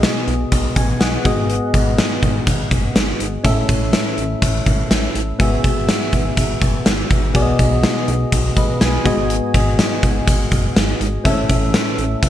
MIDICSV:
0, 0, Header, 1, 4, 480
1, 0, Start_track
1, 0, Tempo, 487805
1, 1472, Time_signature, 4, 2, 24, 8
1, 12093, End_track
2, 0, Start_track
2, 0, Title_t, "Synth keys"
2, 0, Program_c, 0, 88
2, 0, Control_c, 0, 64, 127
2, 0, Note_on_c, 0, 47, 65
2, 0, Note_on_c, 0, 59, 65
2, 0, Note_on_c, 0, 66, 60
2, 0, Note_on_c, 0, 68, 59
2, 0, Note_on_c, 0, 75, 73
2, 233, Note_off_c, 0, 47, 0
2, 734, Note_off_c, 0, 75, 0
2, 751, Note_on_c, 0, 80, 59
2, 979, Note_off_c, 0, 80, 0
2, 988, Note_on_c, 0, 78, 60
2, 996, Note_on_c, 0, 75, 51
2, 1192, Note_off_c, 0, 59, 0
2, 1197, Note_off_c, 0, 66, 0
2, 1200, Note_off_c, 0, 68, 0
2, 1219, Note_on_c, 0, 59, 69
2, 1226, Note_on_c, 0, 66, 63
2, 1230, Note_off_c, 0, 75, 0
2, 1231, Note_on_c, 0, 44, 67
2, 1234, Note_on_c, 0, 68, 64
2, 1242, Note_on_c, 0, 75, 73
2, 1243, Control_c, 0, 64, 0
2, 1428, Control_c, 0, 64, 127
2, 1446, Note_off_c, 0, 78, 0
2, 1912, Note_off_c, 0, 44, 0
2, 3107, Note_off_c, 0, 59, 0
2, 3111, Note_off_c, 0, 66, 0
2, 3115, Note_off_c, 0, 68, 0
2, 3119, Note_off_c, 0, 75, 0
2, 3379, Note_on_c, 0, 61, 65
2, 3386, Note_on_c, 0, 64, 63
2, 3391, Note_on_c, 0, 45, 64
2, 3395, Note_on_c, 0, 69, 61
2, 3403, Control_c, 0, 64, 0
2, 3403, Note_on_c, 0, 76, 74
2, 3594, Control_c, 0, 64, 127
2, 4072, Note_off_c, 0, 45, 0
2, 5267, Note_off_c, 0, 61, 0
2, 5271, Note_off_c, 0, 64, 0
2, 5275, Note_off_c, 0, 69, 0
2, 5279, Note_off_c, 0, 76, 0
2, 5300, Note_on_c, 0, 59, 68
2, 5309, Note_on_c, 0, 66, 60
2, 5311, Note_on_c, 0, 44, 68
2, 5316, Note_on_c, 0, 68, 59
2, 5323, Control_c, 0, 64, 0
2, 5323, Note_on_c, 0, 76, 78
2, 5496, Control_c, 0, 64, 127
2, 5992, Note_off_c, 0, 44, 0
2, 7188, Note_off_c, 0, 59, 0
2, 7192, Note_off_c, 0, 66, 0
2, 7195, Note_off_c, 0, 68, 0
2, 7199, Note_off_c, 0, 76, 0
2, 7219, Note_on_c, 0, 59, 67
2, 7227, Note_on_c, 0, 66, 61
2, 7231, Note_on_c, 0, 47, 64
2, 7234, Note_on_c, 0, 68, 61
2, 7242, Note_on_c, 0, 74, 62
2, 7246, Control_c, 0, 64, 0
2, 7294, Note_off_c, 0, 74, 0
2, 7300, Note_on_c, 0, 75, 74
2, 7408, Control_c, 0, 64, 127
2, 7912, Note_off_c, 0, 47, 0
2, 8422, Note_off_c, 0, 75, 0
2, 8433, Note_on_c, 0, 75, 61
2, 8439, Note_on_c, 0, 71, 51
2, 8661, Note_off_c, 0, 75, 0
2, 8663, Note_off_c, 0, 71, 0
2, 8670, Note_on_c, 0, 80, 61
2, 8872, Note_off_c, 0, 59, 0
2, 8876, Note_off_c, 0, 66, 0
2, 8879, Note_off_c, 0, 68, 0
2, 8897, Note_on_c, 0, 59, 71
2, 8905, Note_on_c, 0, 66, 63
2, 8909, Note_on_c, 0, 44, 68
2, 8913, Note_on_c, 0, 68, 64
2, 8921, Note_on_c, 0, 75, 79
2, 8924, Control_c, 0, 64, 0
2, 9103, Control_c, 0, 64, 127
2, 9127, Note_off_c, 0, 80, 0
2, 9591, Note_off_c, 0, 44, 0
2, 10786, Note_off_c, 0, 59, 0
2, 10790, Note_off_c, 0, 66, 0
2, 10794, Note_off_c, 0, 68, 0
2, 10798, Note_off_c, 0, 75, 0
2, 11058, Note_on_c, 0, 60, 51
2, 11065, Note_on_c, 0, 64, 59
2, 11069, Note_on_c, 0, 45, 66
2, 11074, Note_on_c, 0, 69, 63
2, 11081, Note_on_c, 0, 76, 77
2, 11084, Control_c, 0, 64, 0
2, 11115, Note_on_c, 0, 61, 69
2, 11122, Note_off_c, 0, 60, 0
2, 11240, Control_c, 0, 64, 127
2, 11751, Note_off_c, 0, 45, 0
2, 12093, Note_off_c, 0, 61, 0
2, 12093, Note_off_c, 0, 64, 0
2, 12093, Note_off_c, 0, 69, 0
2, 12093, Note_off_c, 0, 76, 0
2, 12093, End_track
3, 0, Start_track
3, 0, Title_t, "Analog synth bass"
3, 0, Program_c, 1, 38
3, 273, Note_on_c, 1, 35, 95
3, 445, Note_off_c, 1, 35, 0
3, 512, Note_on_c, 1, 35, 98
3, 685, Note_off_c, 1, 35, 0
3, 751, Note_on_c, 1, 33, 92
3, 924, Note_off_c, 1, 33, 0
3, 989, Note_on_c, 1, 35, 97
3, 1163, Note_off_c, 1, 35, 0
3, 1232, Note_on_c, 1, 32, 94
3, 1578, Note_off_c, 1, 32, 0
3, 1712, Note_on_c, 1, 32, 89
3, 1971, Note_off_c, 1, 32, 0
3, 2191, Note_on_c, 1, 32, 102
3, 2364, Note_off_c, 1, 32, 0
3, 2431, Note_on_c, 1, 32, 93
3, 2604, Note_off_c, 1, 32, 0
3, 2670, Note_on_c, 1, 30, 87
3, 2843, Note_off_c, 1, 30, 0
3, 2911, Note_on_c, 1, 32, 104
3, 3084, Note_off_c, 1, 32, 0
3, 3153, Note_on_c, 1, 32, 98
3, 3326, Note_off_c, 1, 32, 0
3, 3391, Note_on_c, 1, 33, 89
3, 3564, Note_off_c, 1, 33, 0
3, 3631, Note_on_c, 1, 33, 98
3, 3891, Note_off_c, 1, 33, 0
3, 4113, Note_on_c, 1, 33, 91
3, 4286, Note_off_c, 1, 33, 0
3, 4352, Note_on_c, 1, 33, 94
3, 4525, Note_off_c, 1, 33, 0
3, 4590, Note_on_c, 1, 32, 90
3, 4763, Note_off_c, 1, 32, 0
3, 4833, Note_on_c, 1, 33, 97
3, 5005, Note_off_c, 1, 33, 0
3, 5072, Note_on_c, 1, 33, 90
3, 5245, Note_off_c, 1, 33, 0
3, 5312, Note_on_c, 1, 32, 95
3, 5485, Note_off_c, 1, 32, 0
3, 5553, Note_on_c, 1, 32, 92
3, 5812, Note_off_c, 1, 32, 0
3, 6031, Note_on_c, 1, 32, 98
3, 6204, Note_off_c, 1, 32, 0
3, 6272, Note_on_c, 1, 32, 96
3, 6445, Note_off_c, 1, 32, 0
3, 6510, Note_on_c, 1, 30, 81
3, 6684, Note_off_c, 1, 30, 0
3, 6754, Note_on_c, 1, 32, 98
3, 6926, Note_off_c, 1, 32, 0
3, 6993, Note_on_c, 1, 32, 96
3, 7231, Note_on_c, 1, 35, 92
3, 7246, Note_off_c, 1, 32, 0
3, 7404, Note_off_c, 1, 35, 0
3, 7471, Note_on_c, 1, 35, 90
3, 7730, Note_off_c, 1, 35, 0
3, 7951, Note_on_c, 1, 35, 94
3, 8124, Note_off_c, 1, 35, 0
3, 8191, Note_on_c, 1, 35, 94
3, 8364, Note_off_c, 1, 35, 0
3, 8429, Note_on_c, 1, 33, 91
3, 8603, Note_off_c, 1, 33, 0
3, 8673, Note_on_c, 1, 35, 96
3, 8846, Note_off_c, 1, 35, 0
3, 8910, Note_on_c, 1, 32, 97
3, 9256, Note_off_c, 1, 32, 0
3, 9391, Note_on_c, 1, 32, 90
3, 9651, Note_off_c, 1, 32, 0
3, 9872, Note_on_c, 1, 32, 102
3, 10044, Note_off_c, 1, 32, 0
3, 10111, Note_on_c, 1, 32, 93
3, 10284, Note_off_c, 1, 32, 0
3, 10350, Note_on_c, 1, 30, 90
3, 10523, Note_off_c, 1, 30, 0
3, 10593, Note_on_c, 1, 32, 98
3, 10765, Note_off_c, 1, 32, 0
3, 10831, Note_on_c, 1, 32, 96
3, 11004, Note_off_c, 1, 32, 0
3, 11072, Note_on_c, 1, 33, 93
3, 11245, Note_off_c, 1, 33, 0
3, 11311, Note_on_c, 1, 33, 93
3, 11570, Note_off_c, 1, 33, 0
3, 11791, Note_on_c, 1, 33, 89
3, 11964, Note_off_c, 1, 33, 0
3, 12031, Note_on_c, 1, 33, 99
3, 12093, Note_off_c, 1, 33, 0
3, 12093, End_track
4, 0, Start_track
4, 0, Title_t, "Drums"
4, 31, Note_on_c, 9, 38, 104
4, 33, Note_on_c, 9, 42, 76
4, 130, Note_off_c, 9, 38, 0
4, 131, Note_off_c, 9, 42, 0
4, 272, Note_on_c, 9, 42, 50
4, 371, Note_off_c, 9, 42, 0
4, 511, Note_on_c, 9, 42, 87
4, 512, Note_on_c, 9, 36, 83
4, 609, Note_off_c, 9, 42, 0
4, 610, Note_off_c, 9, 36, 0
4, 750, Note_on_c, 9, 36, 87
4, 750, Note_on_c, 9, 42, 58
4, 848, Note_off_c, 9, 42, 0
4, 849, Note_off_c, 9, 36, 0
4, 991, Note_on_c, 9, 38, 92
4, 992, Note_on_c, 9, 42, 79
4, 1089, Note_off_c, 9, 38, 0
4, 1091, Note_off_c, 9, 42, 0
4, 1232, Note_on_c, 9, 36, 97
4, 1233, Note_on_c, 9, 42, 75
4, 1330, Note_off_c, 9, 36, 0
4, 1332, Note_off_c, 9, 42, 0
4, 1472, Note_on_c, 9, 42, 66
4, 1571, Note_off_c, 9, 42, 0
4, 1712, Note_on_c, 9, 36, 83
4, 1712, Note_on_c, 9, 42, 63
4, 1810, Note_off_c, 9, 36, 0
4, 1810, Note_off_c, 9, 42, 0
4, 1953, Note_on_c, 9, 38, 108
4, 1954, Note_on_c, 9, 42, 78
4, 2051, Note_off_c, 9, 38, 0
4, 2053, Note_off_c, 9, 42, 0
4, 2191, Note_on_c, 9, 36, 79
4, 2194, Note_on_c, 9, 42, 51
4, 2290, Note_off_c, 9, 36, 0
4, 2293, Note_off_c, 9, 42, 0
4, 2431, Note_on_c, 9, 36, 84
4, 2431, Note_on_c, 9, 42, 92
4, 2529, Note_off_c, 9, 36, 0
4, 2529, Note_off_c, 9, 42, 0
4, 2669, Note_on_c, 9, 36, 86
4, 2670, Note_on_c, 9, 42, 59
4, 2768, Note_off_c, 9, 36, 0
4, 2768, Note_off_c, 9, 42, 0
4, 2910, Note_on_c, 9, 38, 93
4, 2911, Note_on_c, 9, 42, 81
4, 3008, Note_off_c, 9, 38, 0
4, 3010, Note_off_c, 9, 42, 0
4, 3152, Note_on_c, 9, 42, 81
4, 3251, Note_off_c, 9, 42, 0
4, 3389, Note_on_c, 9, 42, 73
4, 3391, Note_on_c, 9, 36, 92
4, 3488, Note_off_c, 9, 42, 0
4, 3489, Note_off_c, 9, 36, 0
4, 3630, Note_on_c, 9, 36, 86
4, 3630, Note_on_c, 9, 42, 64
4, 3728, Note_off_c, 9, 42, 0
4, 3729, Note_off_c, 9, 36, 0
4, 3869, Note_on_c, 9, 38, 102
4, 3870, Note_on_c, 9, 42, 79
4, 3967, Note_off_c, 9, 38, 0
4, 3968, Note_off_c, 9, 42, 0
4, 4111, Note_on_c, 9, 42, 53
4, 4210, Note_off_c, 9, 42, 0
4, 4351, Note_on_c, 9, 36, 89
4, 4351, Note_on_c, 9, 42, 92
4, 4449, Note_off_c, 9, 36, 0
4, 4450, Note_off_c, 9, 42, 0
4, 4590, Note_on_c, 9, 36, 81
4, 4591, Note_on_c, 9, 42, 62
4, 4688, Note_off_c, 9, 36, 0
4, 4689, Note_off_c, 9, 42, 0
4, 4829, Note_on_c, 9, 38, 90
4, 4831, Note_on_c, 9, 42, 84
4, 4928, Note_off_c, 9, 38, 0
4, 4929, Note_off_c, 9, 42, 0
4, 5072, Note_on_c, 9, 42, 80
4, 5171, Note_off_c, 9, 42, 0
4, 5312, Note_on_c, 9, 36, 91
4, 5312, Note_on_c, 9, 42, 68
4, 5410, Note_off_c, 9, 36, 0
4, 5410, Note_off_c, 9, 42, 0
4, 5552, Note_on_c, 9, 36, 86
4, 5553, Note_on_c, 9, 42, 63
4, 5650, Note_off_c, 9, 36, 0
4, 5651, Note_off_c, 9, 42, 0
4, 5792, Note_on_c, 9, 38, 101
4, 5793, Note_on_c, 9, 42, 82
4, 5890, Note_off_c, 9, 38, 0
4, 5892, Note_off_c, 9, 42, 0
4, 6031, Note_on_c, 9, 36, 76
4, 6032, Note_on_c, 9, 42, 54
4, 6129, Note_off_c, 9, 36, 0
4, 6131, Note_off_c, 9, 42, 0
4, 6271, Note_on_c, 9, 36, 88
4, 6271, Note_on_c, 9, 42, 88
4, 6369, Note_off_c, 9, 36, 0
4, 6369, Note_off_c, 9, 42, 0
4, 6510, Note_on_c, 9, 36, 87
4, 6510, Note_on_c, 9, 42, 59
4, 6608, Note_off_c, 9, 36, 0
4, 6609, Note_off_c, 9, 42, 0
4, 6749, Note_on_c, 9, 38, 95
4, 6751, Note_on_c, 9, 42, 86
4, 6848, Note_off_c, 9, 38, 0
4, 6849, Note_off_c, 9, 42, 0
4, 6991, Note_on_c, 9, 42, 76
4, 6993, Note_on_c, 9, 36, 88
4, 7090, Note_off_c, 9, 42, 0
4, 7091, Note_off_c, 9, 36, 0
4, 7230, Note_on_c, 9, 42, 66
4, 7231, Note_on_c, 9, 36, 94
4, 7329, Note_off_c, 9, 36, 0
4, 7329, Note_off_c, 9, 42, 0
4, 7470, Note_on_c, 9, 42, 64
4, 7471, Note_on_c, 9, 36, 79
4, 7569, Note_off_c, 9, 36, 0
4, 7569, Note_off_c, 9, 42, 0
4, 7710, Note_on_c, 9, 38, 105
4, 7711, Note_on_c, 9, 42, 78
4, 7808, Note_off_c, 9, 38, 0
4, 7809, Note_off_c, 9, 42, 0
4, 7951, Note_on_c, 9, 42, 54
4, 8049, Note_off_c, 9, 42, 0
4, 8191, Note_on_c, 9, 36, 83
4, 8191, Note_on_c, 9, 42, 93
4, 8289, Note_off_c, 9, 36, 0
4, 8289, Note_off_c, 9, 42, 0
4, 8429, Note_on_c, 9, 36, 87
4, 8430, Note_on_c, 9, 42, 61
4, 8528, Note_off_c, 9, 36, 0
4, 8528, Note_off_c, 9, 42, 0
4, 8670, Note_on_c, 9, 38, 98
4, 8671, Note_on_c, 9, 42, 83
4, 8768, Note_off_c, 9, 38, 0
4, 8770, Note_off_c, 9, 42, 0
4, 8910, Note_on_c, 9, 36, 94
4, 8911, Note_on_c, 9, 42, 77
4, 9009, Note_off_c, 9, 36, 0
4, 9009, Note_off_c, 9, 42, 0
4, 9151, Note_on_c, 9, 42, 70
4, 9250, Note_off_c, 9, 42, 0
4, 9391, Note_on_c, 9, 36, 84
4, 9392, Note_on_c, 9, 42, 64
4, 9489, Note_off_c, 9, 36, 0
4, 9490, Note_off_c, 9, 42, 0
4, 9632, Note_on_c, 9, 38, 104
4, 9633, Note_on_c, 9, 42, 84
4, 9730, Note_off_c, 9, 38, 0
4, 9732, Note_off_c, 9, 42, 0
4, 9871, Note_on_c, 9, 36, 80
4, 9872, Note_on_c, 9, 42, 53
4, 9969, Note_off_c, 9, 36, 0
4, 9971, Note_off_c, 9, 42, 0
4, 10111, Note_on_c, 9, 36, 83
4, 10112, Note_on_c, 9, 42, 92
4, 10209, Note_off_c, 9, 36, 0
4, 10210, Note_off_c, 9, 42, 0
4, 10349, Note_on_c, 9, 36, 80
4, 10350, Note_on_c, 9, 42, 60
4, 10448, Note_off_c, 9, 36, 0
4, 10449, Note_off_c, 9, 42, 0
4, 10592, Note_on_c, 9, 38, 96
4, 10594, Note_on_c, 9, 42, 83
4, 10691, Note_off_c, 9, 38, 0
4, 10692, Note_off_c, 9, 42, 0
4, 10834, Note_on_c, 9, 42, 77
4, 10932, Note_off_c, 9, 42, 0
4, 11072, Note_on_c, 9, 36, 92
4, 11072, Note_on_c, 9, 42, 67
4, 11170, Note_off_c, 9, 36, 0
4, 11170, Note_off_c, 9, 42, 0
4, 11311, Note_on_c, 9, 36, 85
4, 11312, Note_on_c, 9, 42, 63
4, 11410, Note_off_c, 9, 36, 0
4, 11410, Note_off_c, 9, 42, 0
4, 11552, Note_on_c, 9, 38, 109
4, 11554, Note_on_c, 9, 42, 83
4, 11651, Note_off_c, 9, 38, 0
4, 11652, Note_off_c, 9, 42, 0
4, 11793, Note_on_c, 9, 42, 52
4, 11891, Note_off_c, 9, 42, 0
4, 12031, Note_on_c, 9, 36, 91
4, 12031, Note_on_c, 9, 42, 92
4, 12093, Note_off_c, 9, 36, 0
4, 12093, Note_off_c, 9, 42, 0
4, 12093, End_track
0, 0, End_of_file